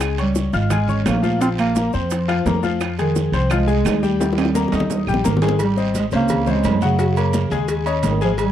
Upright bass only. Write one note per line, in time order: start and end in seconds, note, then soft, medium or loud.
0.00 0.47 C#2 medium
0.53 1.02 G#1 loud
1.06 1.88 A#1 medium
1.94 2.42 F2 loud
2.45 3.27 F2 medium
3.32 3.81 C2 loud
3.85 4.67 D#2 loud
4.72 5.05 D#2 medium
5.07 5.24 A#1 medium
5.25 6.06 G#1 medium
6.12 6.61 C#2 medium
6.64 7.46 F#2 loud
7.50 8.00 D#2 medium
8.03 8.52 G#1 loud